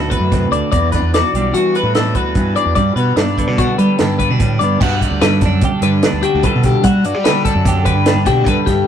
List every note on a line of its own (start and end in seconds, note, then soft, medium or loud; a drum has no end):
0.00 0.19 D2 medium
0.00 0.70 A2 medium
0.00 0.51 D3 medium
0.00 0.76 D4 medium
0.00 0.76 F#4 medium
0.00 0.10 A4 medium
0.00 0.12 B4 medium
0.10 0.52 B4 medium
0.10 1.77 B4 medium
0.10 kick medium
0.10 closed hi-hat medium
0.20 0.49 F#2 medium
0.32 0.52 C3 medium
0.32 kick loud
0.32 snare soft
0.32 closed hi-hat medium
0.51 0.61 D2 medium
0.51 0.73 D3 medium
0.51 0.70 D5 medium
0.51 closed hi-hat medium
0.72 1.01 E2 loud
0.72 1.95 E2 medium
0.72 0.92 D5 medium
0.72 kick loud
0.72 closed hi-hat medium
0.92 1.36 D4 medium
0.92 1.13 B4 medium
0.92 kick medium
0.92 snare soft
0.92 closed hi-hat medium
1.02 1.22 E2 medium
1.14 1.56 F#4 medium
1.14 1.55 D5 medium
1.14 snare loud
1.14 closed hi-hat medium
1.33 1.52 B1 medium
1.33 3.37 G3 medium
1.33 1.96 D4 soft
1.33 closed hi-hat medium
1.53 1.82 E3 medium
1.53 1.75 F#4 medium
1.53 closed hi-hat medium
1.57 2.16 F#4 medium
1.75 1.95 B4 medium
1.75 3.80 B4 medium
1.75 closed hi-hat medium
1.83 2.15 A2 medium
1.95 2.36 E2 medium
1.95 2.57 D4 medium
1.95 2.15 A4 medium
1.95 snare loud
1.95 closed hi-hat medium
2.15 2.34 D2 medium
2.15 2.80 F#4 medium
2.15 2.56 B4 medium
2.15 kick medium
2.15 closed hi-hat medium
2.35 2.77 E2 medium
2.35 2.55 G2 medium
2.35 kick loud
2.35 closed hi-hat medium
2.56 2.97 D4 medium
2.56 2.74 D5 medium
2.56 closed hi-hat medium
2.66 2.75 E2 medium
2.75 2.95 G2 loud
2.75 4.40 G2 medium
2.75 2.96 D5 medium
2.75 kick medium
2.75 closed hi-hat medium
2.96 3.15 B2 medium
2.96 3.38 B3 medium
2.96 3.16 B4 medium
2.96 closed hi-hat medium
3.16 3.47 G2 medium
3.16 3.58 D4 medium
3.16 3.58 D5 medium
3.16 snare loud
3.16 closed hi-hat medium
3.38 4.00 D3 medium
3.38 4.00 B3 soft
3.38 kick medium
3.38 closed hi-hat medium
3.47 3.67 B2 medium
3.58 4.20 D4 medium
3.58 3.78 F#4 medium
3.58 kick loud
3.58 closed hi-hat medium
3.78 3.88 G3 medium
3.78 4.79 G4 medium
3.78 3.98 B4 medium
3.78 closed hi-hat medium
3.98 4.28 G2 medium
3.98 4.79 D3 medium
3.98 4.20 B3 medium
3.98 4.18 A4 medium
3.98 snare loud
3.98 closed hi-hat medium
4.19 4.31 B3 medium
4.19 4.60 B4 medium
4.19 kick medium
4.19 closed hi-hat medium
4.30 4.39 B2 medium
4.30 4.81 D4 soft
4.40 4.79 G2 medium
4.40 4.58 A2 medium
4.40 kick loud
4.40 closed hi-hat medium
4.59 4.79 G2 medium
4.59 4.80 D5 medium
4.59 closed hi-hat medium
4.63 4.80 B3 medium
4.80 5.00 G2 medium
4.80 6.45 G2 medium
4.80 5.64 F#4 medium
4.80 5.01 F#5 medium
4.80 kick loud
4.80 crash loud
5.01 5.21 D5 medium
5.01 kick medium
5.01 closed hi-hat medium
5.11 5.21 D2 medium
5.21 5.41 G2 loud
5.21 5.83 D3 medium
5.21 5.42 B4 medium
5.21 snare loud
5.21 closed hi-hat medium
5.41 5.61 F#2 medium
5.41 5.83 A4 medium
5.41 kick medium
5.41 snare soft
5.41 closed hi-hat medium
5.46 6.04 D4 medium
5.61 6.24 G4 medium
5.61 kick loud
5.61 closed hi-hat medium
5.82 6.01 G2 medium
5.82 6.83 D3 medium
5.82 6.24 B4 medium
5.82 closed hi-hat medium
6.03 6.83 D4 medium
6.03 snare loud
6.03 closed hi-hat medium
6.13 6.22 D2 medium
6.23 6.44 F#4 medium
6.23 6.43 G4 medium
6.23 closed hi-hat medium
6.35 6.44 D2 medium
6.43 6.89 G2 medium
6.43 6.83 A4 medium
6.43 6.65 B4 medium
6.43 kick loud
6.43 closed hi-hat medium
6.55 6.74 B2 medium
6.63 6.85 G4 medium
6.63 kick medium
6.63 snare soft
6.63 closed hi-hat medium
6.83 7.05 G3 loud
6.83 7.67 F#4 medium
6.83 7.06 F#5 medium
6.83 kick loud
6.83 closed hi-hat loud
7.04 7.14 G2 medium
7.04 7.26 D5 medium
7.04 closed hi-hat medium
7.14 7.52 G3 loud
7.24 7.84 D3 medium
7.24 7.44 B4 medium
7.24 snare loud
7.24 closed hi-hat medium
7.45 8.06 D4 medium
7.45 7.85 A4 medium
7.45 kick medium
7.45 closed hi-hat medium
7.55 7.96 F#2 medium
7.65 8.27 G4 medium
7.65 kick loud
7.65 snare soft
7.65 closed hi-hat loud
7.85 8.85 D3 medium
7.85 8.26 B4 medium
7.85 kick medium
7.85 closed hi-hat medium
7.96 8.15 G2 medium
8.06 8.85 D4 medium
8.06 snare loud
8.06 closed hi-hat medium
8.15 8.25 G2 medium
8.26 8.46 B2 medium
8.26 8.47 F#4 medium
8.26 8.47 G4 medium
8.26 kick medium
8.26 snare soft
8.26 closed hi-hat medium
8.46 8.56 G2 medium
8.46 8.85 G2 medium
8.46 8.85 A4 medium
8.46 8.67 B4 medium
8.46 kick loud
8.46 closed hi-hat medium
8.66 8.86 G2 medium
8.66 8.87 G4 medium
8.66 kick medium
8.66 snare soft
8.66 closed hi-hat medium